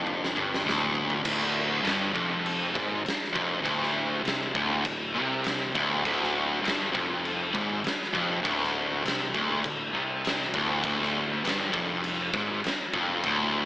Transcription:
0.00 0.31 F1 loud
0.00 0.34 F2 loud
0.07 mid tom medium
0.24 snare medium
0.35 0.64 G1 loud
0.35 0.64 G2 loud
0.35 mid tom loud
0.54 snare medium
0.65 1.21 D1 loud
0.65 1.22 D2 loud
0.69 snare medium
0.81 floor tom medium
0.95 floor tom loud
1.10 floor tom loud
1.23 1.82 D1 medium
1.23 1.82 D2 loud
1.23 kick loud
1.23 crash loud
1.23 crash medium
1.83 2.13 G1 medium
1.83 2.13 G2 loud
1.83 crash medium
1.87 snare loud
2.13 2.72 F1 loud
2.13 2.73 F2 loud
2.13 kick loud
2.46 crash medium
2.74 3.03 G#1 medium
2.74 3.04 G#2 loud
2.74 kick loud
3.05 muted distorted electric guitar stroke medium
3.05 muted picked electric bass stroke soft
3.05 snare loud
3.05 crash medium
3.24 snare soft
3.32 3.63 F1 loud
3.32 3.62 F2 medium
3.32 kick loud
3.62 4.21 D1 medium
3.62 4.23 D2 loud
3.62 kick loud
3.67 crash medium
3.83 snare soft
4.23 4.53 C2 loud
4.23 4.53 C3 loud
4.23 crash medium
4.28 snare loud
4.55 4.83 D1 loud
4.55 4.84 D2 loud
4.55 kick loud
4.85 5.13 D1 medium
4.85 5.10 D2 medium
4.85 kick medium
4.85 crash medium
5.14 5.71 C2 medium
5.14 5.74 C3 loud
5.44 snare loud
5.44 crash medium
5.74 6.03 D1 loud
5.74 6.04 D2 loud
5.74 kick loud
6.05 6.61 D1 medium
6.05 6.62 D2 loud
6.05 kick loud
6.05 crash medium
6.23 snare soft
6.62 6.92 G1 loud
6.62 6.91 G2 loud
6.62 crash medium
6.68 snare loud
6.92 7.51 F1 loud
6.92 7.53 F2 loud
6.92 kick loud
7.25 crash medium
7.54 7.83 G#1 medium
7.54 7.84 G#2 loud
7.54 kick loud
7.84 muted distorted electric guitar stroke medium
7.84 muted picked electric bass stroke soft
7.84 snare loud
7.84 crash medium
8.03 snare soft
8.13 8.43 F1 loud
8.13 8.42 F2 medium
8.13 kick loud
8.42 9.01 D1 loud
8.42 9.02 D2 loud
8.42 kick loud
8.42 crash medium
8.63 snare soft
9.04 9.33 C2 medium
9.04 9.33 C3 loud
9.04 crash medium
9.08 snare loud
9.34 9.62 D1 loud
9.34 9.63 D2 loud
9.34 kick loud
9.64 9.92 D1 medium
9.64 9.89 D2 medium
9.64 kick medium
9.64 crash medium
9.93 10.50 C2 loud
9.93 10.53 C3 loud
10.25 snare loud
10.25 crash medium
10.43 snare soft
10.54 10.82 D1 medium
10.54 10.83 D2 medium
10.54 kick loud
10.84 11.40 D1 medium
10.84 11.43 D2 loud
10.84 kick loud
10.84 crash medium
11.03 snare soft
11.43 11.71 G1 medium
11.43 11.73 G2 loud
11.43 crash medium
11.47 snare loud
11.73 12.29 F1 medium
11.73 12.32 F2 loud
11.73 kick loud
12.04 crash medium
12.33 12.61 G#1 loud
12.33 12.63 G#2 loud
12.33 kick loud
12.64 muted picked electric bass stroke soft
12.64 muted distorted electric guitar stroke medium
12.64 snare loud
12.64 crash medium
12.93 13.21 F1 loud
12.93 13.22 F2 medium
12.93 kick loud
13.23 13.65 D1 medium
13.23 13.65 D2 loud
13.23 kick loud
13.23 crash medium

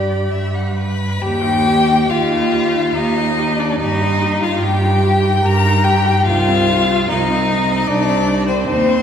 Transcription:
0.00 0.22 G2 medium
0.00 0.75 G4 medium
0.00 0.33 D5 medium
0.00 0.76 B5 soft
0.31 1.12 G2 medium
0.31 0.56 E5 medium
0.55 0.77 F#5 medium
0.77 1.23 B4 medium
0.77 1.23 B5 medium
1.21 2.00 D#2 medium
1.21 2.11 G4 medium
1.21 1.46 G4 medium
1.21 2.11 G5 loud
1.44 1.68 D#4 medium
1.66 1.90 G4 medium
1.88 2.09 D#4 medium
2.09 2.86 D#2 medium
2.09 2.97 F4 medium
2.09 2.32 G4 medium
2.09 2.97 F5 medium
2.31 2.54 D#4 medium
2.53 2.77 G4 medium
2.75 2.95 D#4 medium
2.95 3.71 D#2 medium
2.95 3.61 D#4 medium
2.95 3.19 G4 medium
2.95 3.61 D#5 medium
3.18 3.41 D#4 medium
3.39 3.61 G4 medium
3.59 3.80 D4 medium
3.59 3.80 D#4 medium
3.59 3.79 D5 medium
3.80 4.53 G2 medium
3.80 4.44 D#4 medium
3.80 4.03 G4 medium
3.80 4.41 D#5 medium
4.01 4.24 D#4 medium
4.22 4.45 G4 medium
4.43 4.63 D#4 soft
4.43 4.64 F4 medium
4.43 4.62 F5 medium
4.63 5.34 G2 medium
4.63 5.43 G4 medium
4.63 4.85 G4 medium
4.63 5.47 G5 medium
4.84 5.06 D#4 medium
5.04 5.26 G4 medium
5.25 5.44 D#4 medium
5.44 6.16 G2 medium
5.44 5.67 G4 medium
5.44 5.86 A#4 medium
5.44 5.86 A#5 loud
5.65 5.87 D#4 medium
5.84 6.27 G4 medium
5.84 6.08 G4 medium
5.84 6.25 G5 medium
6.06 6.27 D#4 medium
6.26 6.99 C2 medium
6.26 6.50 D#4 medium
6.26 7.11 F4 medium
6.26 7.07 F5 loud
6.48 6.71 C4 medium
6.70 6.92 D#4 medium
6.90 7.10 C4 medium
7.09 7.79 C2 medium
7.09 7.88 D#4 medium
7.09 7.32 D#4 medium
7.09 7.88 D#5 medium
7.31 7.52 C4 medium
7.51 7.72 D#4 medium
7.71 7.89 C4 medium
7.87 8.58 C2 medium
7.87 8.50 D4 medium
7.87 8.11 D#4 medium
7.87 8.46 D5 loud
8.10 8.30 C4 medium
8.28 8.50 D#4 medium
8.47 8.67 C4 medium
8.47 8.66 C5 medium
8.66 9.02 D#2 medium
8.66 9.02 C4 medium
8.66 8.90 D#4 medium
8.66 9.02 C5 medium
8.88 9.02 C4 medium

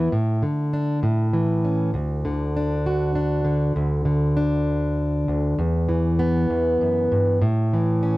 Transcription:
0.00 0.12 B3 soft
0.00 0.11 E4 soft
0.13 0.42 A2 medium
0.43 1.03 D3 soft
0.73 0.99 D4 medium
1.03 1.94 A2 medium
1.33 1.90 E3 soft
1.65 1.91 C#4 soft
1.94 3.75 D2 medium
2.25 3.44 D3 medium
2.57 3.14 D4 soft
2.86 3.73 F#4 soft
3.16 3.72 D4 soft
3.45 4.04 D3 medium
3.76 5.27 D2 medium
4.05 5.58 D3 medium
4.37 5.55 D4 medium
5.28 5.58 D2 medium
5.58 6.49 E2 medium
5.88 7.37 E3 medium
6.19 7.41 B3 medium
6.50 6.80 E2 medium
6.81 7.11 F#2 medium
7.12 7.42 G2 medium
7.41 8.17 A2 medium
7.73 8.17 E3 medium
8.03 8.17 C#4 medium

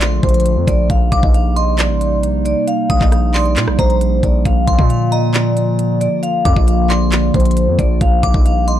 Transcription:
0.00 0.20 A#1 loud
0.00 0.86 D3 medium
0.00 0.86 F3 medium
0.00 0.88 A3 medium
0.00 0.86 F4 medium
0.00 0.20 D5 medium
0.00 0.41 C6 medium
0.00 clap loud
0.00 closed hi-hat medium
0.23 0.58 A#1 loud
0.23 0.65 C5 medium
0.23 kick medium
0.23 closed hi-hat soft
0.29 closed hi-hat medium
0.34 closed hi-hat medium
0.40 closed hi-hat medium
0.46 closed hi-hat medium
0.56 0.67 F2 loud
0.67 0.89 A#1 loud
0.67 0.86 D5 medium
0.67 kick medium
0.67 closed hi-hat medium
0.90 1.11 A#1 loud
0.90 4.42 C3 medium
0.90 4.42 G3 medium
0.90 8.80 A#3 medium
0.90 4.42 D#4 medium
0.90 1.21 F5 loud
0.90 kick loud
0.90 closed hi-hat medium
1.12 1.23 A#1 loud
1.12 1.54 D6 medium
1.12 kick loud
1.12 closed hi-hat medium
1.23 1.91 A#1 loud
1.23 1.33 D#5 medium
1.23 kick loud
1.34 1.53 F5 medium
1.34 closed hi-hat medium
1.56 1.76 D#5 medium
1.56 2.19 C6 medium
1.56 closed hi-hat medium
1.79 2.41 D5 medium
1.79 clap loud
1.79 closed hi-hat medium
1.90 2.25 A1 loud
2.01 closed hi-hat medium
2.23 2.55 A#1 loud
2.23 closed hi-hat medium
2.45 2.64 D5 medium
2.45 closed hi-hat medium
2.68 2.99 F5 loud
2.68 closed hi-hat medium
2.90 3.00 A#1 loud
2.90 3.32 D#6 medium
2.90 kick medium
2.90 closed hi-hat medium
3.01 3.58 A#1 loud
3.01 3.11 D#5 medium
3.01 kick loud
3.01 clap medium
3.12 3.31 F5 medium
3.12 cross-stick medium
3.12 closed hi-hat medium
3.34 3.76 D5 medium
3.34 3.76 C6 medium
3.34 clap medium
3.34 closed hi-hat medium
3.34 open hi-hat medium
3.45 closed hi-hat soft
3.56 3.69 A#2 loud
3.56 clap loud
3.56 closed hi-hat medium
3.68 3.78 A#1 medium
3.68 cross-stick loud
3.79 4.21 A#1 loud
3.79 4.20 C5 medium
3.79 4.00 A#5 medium
3.79 kick medium
3.79 closed hi-hat medium
3.90 closed hi-hat soft
4.01 closed hi-hat medium
4.23 4.44 A#1 loud
4.23 4.42 D5 medium
4.23 kick medium
4.23 closed hi-hat medium
4.45 4.67 A#1 loud
4.45 7.97 D3 medium
4.45 7.97 F3 medium
4.45 7.97 F4 medium
4.45 4.77 F5 loud
4.45 kick loud
4.45 closed hi-hat medium
4.67 4.78 A#1 loud
4.67 5.09 C6 medium
4.67 kick medium
4.67 closed hi-hat medium
4.78 6.08 A#2 loud
4.78 4.88 D#5 medium
4.78 kick loud
4.90 5.09 F5 medium
4.90 closed hi-hat medium
5.12 5.31 D#5 medium
5.12 5.75 A#5 medium
5.12 closed hi-hat medium
5.34 5.97 D5 medium
5.34 clap loud
5.34 closed hi-hat medium
5.57 closed hi-hat medium
5.79 closed hi-hat medium
6.01 6.20 D5 medium
6.01 closed hi-hat medium
6.23 6.54 F5 loud
6.23 closed hi-hat medium
6.45 6.56 F2 loud
6.45 6.87 D6 medium
6.45 kick loud
6.45 closed hi-hat medium
6.56 7.31 A#1 loud
6.56 6.66 D#5 medium
6.56 kick loud
6.67 6.86 F5 medium
6.67 closed hi-hat medium
6.90 7.32 D5 medium
6.90 7.53 C6 medium
6.90 clap medium
6.90 closed hi-hat medium
7.12 clap loud
7.12 closed hi-hat medium
7.34 7.69 A#1 loud
7.34 7.76 C5 medium
7.34 kick medium
7.34 closed hi-hat soft
7.40 closed hi-hat medium
7.45 closed hi-hat medium
7.51 closed hi-hat medium
7.57 closed hi-hat medium
7.68 7.78 F2 loud
7.79 8.00 A#1 loud
7.79 7.98 D5 medium
7.79 kick medium
7.79 closed hi-hat medium
8.01 8.22 A#1 loud
8.01 8.80 C3 medium
8.01 8.80 G3 medium
8.01 8.80 D#4 medium
8.01 8.32 F5 loud
8.01 kick loud
8.01 closed hi-hat medium
8.23 8.34 A#1 loud
8.23 8.65 D6 medium
8.23 kick loud
8.23 closed hi-hat medium
8.34 8.80 A#1 loud
8.34 8.44 D#5 medium
8.34 kick loud
8.46 8.65 F5 medium
8.46 closed hi-hat medium
8.68 8.80 D#5 medium
8.68 8.80 C6 medium
8.68 closed hi-hat medium

